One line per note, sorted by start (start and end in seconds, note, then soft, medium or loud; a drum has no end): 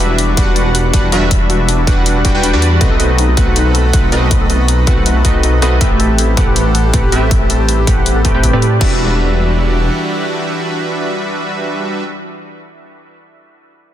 0.00 0.36 E1 medium
0.00 2.77 E3 medium
0.00 0.35 G3 medium
0.00 2.77 G3 medium
0.00 0.18 D4 medium
0.00 0.35 D4 medium
0.00 2.77 D4 medium
0.00 0.35 F#4 medium
0.00 0.37 F#4 medium
0.00 2.77 F#4 medium
0.00 0.35 B4 medium
0.00 0.35 E5 loud
0.10 0.28 E4 medium
0.18 0.56 D4 medium
0.18 closed hi-hat medium
0.28 0.47 E4 medium
0.37 0.92 E1 medium
0.37 0.91 G3 medium
0.37 0.91 D4 medium
0.37 0.91 F#4 medium
0.37 0.65 F#4 medium
0.37 0.91 B4 medium
0.37 0.91 F#5 loud
0.37 kick loud
0.37 closed hi-hat medium
0.47 0.84 E4 medium
0.56 0.93 D4 medium
0.56 closed hi-hat medium
0.66 0.74 F#4 loud
0.75 1.12 F#4 loud
0.75 closed hi-hat medium
0.85 1.03 E4 medium
0.93 1.10 E1 medium
0.93 1.10 G3 medium
0.93 1.10 D4 medium
0.93 1.31 D4 medium
0.93 1.10 F#4 medium
0.93 1.10 B4 medium
0.93 1.10 F#5 medium
0.93 kick medium
0.93 closed hi-hat medium
1.03 1.22 E4 medium
1.12 1.85 E1 medium
1.12 1.85 G3 medium
1.12 1.85 D4 medium
1.12 1.85 F#4 medium
1.12 1.40 F#4 medium
1.12 1.85 B4 medium
1.12 1.85 E5 loud
1.12 closed hi-hat medium
1.22 1.59 E4 medium
1.31 1.68 D4 medium
1.31 kick loud
1.31 closed hi-hat medium
1.41 1.49 F#4 medium
1.50 1.87 F#4 loud
1.50 closed hi-hat medium
1.60 1.78 E4 medium
1.69 2.06 D4 medium
1.69 closed hi-hat medium
1.78 1.97 E4 medium
1.87 2.23 E1 medium
1.87 2.23 G3 medium
1.87 2.23 D4 medium
1.87 2.23 F#4 medium
1.87 2.23 B4 medium
1.87 2.23 F#5 medium
1.87 kick loud
1.87 closed hi-hat medium
1.97 2.24 E4 medium
2.06 2.43 D4 medium
2.06 closed hi-hat medium
2.16 2.34 F#4 medium
2.25 2.33 E1 medium
2.25 2.32 G3 medium
2.25 2.32 D4 medium
2.25 2.87 E4 medium
2.25 2.32 F#4 medium
2.25 2.32 B4 medium
2.25 2.32 G5 loud
2.25 kick medium
2.25 closed hi-hat medium
2.35 2.55 E1 medium
2.35 2.51 G3 medium
2.35 2.51 D4 medium
2.35 2.78 F#4 medium
2.35 2.51 F#4 medium
2.35 2.51 B4 medium
2.35 2.51 G5 loud
2.43 2.53 D4 medium
2.43 closed hi-hat medium
2.53 2.79 E2 medium
2.53 2.79 G3 medium
2.53 2.62 D4 loud
2.53 2.79 D4 medium
2.53 2.79 F#4 medium
2.53 2.79 B4 medium
2.53 2.79 D5 medium
2.62 2.87 D4 medium
2.62 closed hi-hat medium
2.72 3.15 G4 medium
2.81 3.36 B1 medium
2.81 3.35 A3 medium
2.81 5.78 A3 medium
2.81 3.35 C4 medium
2.81 3.18 D#4 medium
2.81 5.78 D#4 medium
2.81 3.35 F#4 medium
2.81 3.35 B4 medium
2.81 5.78 B4 medium
2.81 3.35 D#5 loud
2.81 kick loud
2.81 closed hi-hat medium
2.91 2.99 A4 loud
3.00 3.37 A4 loud
3.00 closed hi-hat medium
3.09 3.28 F#4 medium
3.18 3.56 D#4 medium
3.18 closed hi-hat medium
3.28 3.47 F#4 medium
3.37 3.92 B1 medium
3.37 3.91 A3 medium
3.37 3.91 C4 medium
3.37 3.91 F#4 medium
3.37 3.65 A4 medium
3.37 3.91 B4 medium
3.37 3.91 F#5 loud
3.37 kick medium
3.37 closed hi-hat medium
3.47 3.84 F#4 medium
3.56 3.93 D#4 medium
3.56 closed hi-hat medium
3.66 3.74 A4 loud
3.75 4.12 A4 medium
3.75 closed hi-hat medium
3.85 4.03 F#4 medium
3.93 4.10 B1 loud
3.93 4.10 A3 medium
3.93 4.10 C4 medium
3.93 4.31 D#4 medium
3.93 4.10 F#4 medium
3.93 4.10 B4 medium
3.93 4.10 F#5 medium
3.93 kick medium
3.93 closed hi-hat medium
4.03 4.22 F#4 medium
4.12 4.85 B1 loud
4.12 4.85 A3 medium
4.12 4.85 C4 medium
4.12 4.85 F#4 medium
4.12 4.40 A4 medium
4.12 4.85 B4 medium
4.12 4.85 D#5 medium
4.12 closed hi-hat medium
4.22 4.59 F#4 medium
4.31 4.68 D#4 medium
4.31 kick loud
4.31 closed hi-hat medium
4.41 4.49 A4 medium
4.50 4.87 A4 medium
4.50 closed hi-hat medium
4.60 4.78 F#4 medium
4.68 5.06 D#4 medium
4.68 closed hi-hat medium
4.78 4.97 F#4 medium
4.87 5.23 B1 medium
4.87 5.23 A3 medium
4.87 5.23 C4 medium
4.87 5.23 F#4 medium
4.87 5.15 A4 medium
4.87 5.23 B4 medium
4.87 5.23 F#5 medium
4.87 kick medium
4.87 closed hi-hat medium
4.97 5.34 F#4 medium
5.06 5.43 D#4 medium
5.06 closed hi-hat medium
5.16 5.24 A4 loud
5.25 5.60 B1 medium
5.25 5.60 A3 medium
5.25 5.60 C4 medium
5.25 5.60 F#4 medium
5.25 5.62 A4 medium
5.25 5.60 B4 medium
5.25 5.60 D#5 medium
5.25 kick medium
5.25 closed hi-hat medium
5.35 5.53 F#4 medium
5.43 5.87 D#4 medium
5.43 closed hi-hat medium
5.53 5.72 F#4 medium
5.62 5.79 B1 medium
5.62 5.79 A3 medium
5.62 5.79 C4 medium
5.62 5.79 F#4 medium
5.62 5.90 A4 medium
5.62 5.79 B4 medium
5.62 5.79 D#5 loud
5.62 closed hi-hat medium
5.72 6.15 F#4 medium
5.81 6.35 A1 medium
5.81 8.78 G3 medium
5.81 8.78 A3 medium
5.81 6.35 A3 medium
5.81 8.78 C4 medium
5.81 6.35 C4 medium
5.81 6.18 E4 medium
5.81 6.35 G4 medium
5.81 6.35 B4 medium
5.81 6.35 E5 loud
5.81 kick loud
5.81 closed hi-hat medium
5.91 5.99 A4 medium
6.00 6.37 A4 loud
6.00 closed hi-hat medium
6.09 6.28 G4 medium
6.18 6.56 E4 medium
6.18 closed hi-hat medium
6.28 6.47 G4 medium
6.37 6.92 A1 medium
6.37 6.91 A3 medium
6.37 6.91 C4 medium
6.37 6.91 G4 medium
6.37 6.65 A4 medium
6.37 6.91 B4 medium
6.37 6.91 F#5 loud
6.37 kick medium
6.37 closed hi-hat medium
6.47 6.84 G4 medium
6.56 6.93 E4 medium
6.56 closed hi-hat medium
6.66 6.74 A4 loud
6.75 7.12 A4 medium
6.75 closed hi-hat medium
6.85 7.03 G4 medium
6.94 7.10 A1 medium
6.94 7.10 A3 medium
6.94 7.10 C4 medium
6.94 7.10 G4 medium
6.94 7.10 B4 medium
6.94 7.10 F#5 medium
6.94 kick medium
6.94 closed hi-hat medium
7.03 7.22 G4 medium
7.12 7.85 A1 medium
7.12 7.85 A3 medium
7.12 7.85 C4 medium
7.12 7.85 G4 medium
7.12 7.40 A4 medium
7.12 7.85 B4 medium
7.12 7.85 E5 loud
7.12 closed hi-hat medium
7.22 7.59 G4 medium
7.31 7.68 E4 medium
7.31 kick loud
7.31 closed hi-hat medium
7.41 7.49 A4 medium
7.50 7.87 A4 medium
7.50 closed hi-hat medium
7.60 7.78 G4 medium
7.68 8.06 E4 medium
7.68 closed hi-hat medium
7.78 7.97 G4 medium
7.87 8.23 A1 medium
7.87 8.23 A3 medium
7.87 8.23 C4 medium
7.87 8.23 G4 medium
7.87 8.15 A4 medium
7.87 8.23 B4 medium
7.87 8.23 F#5 medium
7.87 kick medium
7.87 closed hi-hat medium
7.97 8.34 G4 medium
8.06 8.43 E4 medium
8.06 closed hi-hat medium
8.16 8.24 A4 medium
8.25 8.33 A1 medium
8.25 8.32 A3 medium
8.25 8.32 C4 medium
8.25 8.32 G4 medium
8.25 8.62 A4 medium
8.25 8.32 B4 medium
8.25 8.32 G5 medium
8.25 kick medium
8.25 closed hi-hat medium
8.35 8.51 A1 medium
8.35 8.51 A3 loud
8.35 8.51 C4 medium
8.35 8.53 G4 medium
8.35 8.51 G4 medium
8.35 8.51 B4 medium
8.35 8.51 G5 loud
8.43 11.05 E4 medium
8.43 kick soft
8.43 closed hi-hat medium
8.53 8.79 A2 medium
8.53 8.79 A3 medium
8.53 8.79 C4 medium
8.53 8.79 G4 medium
8.53 8.79 B4 medium
8.53 8.79 D5 medium
8.62 10.82 A4 medium
8.62 closed hi-hat medium
8.72 11.07 G4 medium
8.81 9.90 E1 medium
8.81 12.03 E3 medium
8.81 12.03 G3 medium
8.81 11.61 D4 medium
8.81 12.03 D4 medium
8.81 12.03 F#4 medium
8.81 12.03 B4 medium
8.81 12.03 E5 medium
8.81 kick loud
8.81 crash medium